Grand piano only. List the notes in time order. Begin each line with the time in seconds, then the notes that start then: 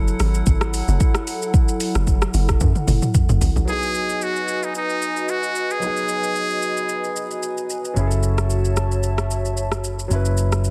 3.65 F#3 B3
3.70 D#4 G#4
5.79 F#3 B3
5.84 D#4 G#4
7.94 F#3 C#4
7.98 E4 G#4
8.07 A4
10.08 F#3 C#4
10.13 E4 B4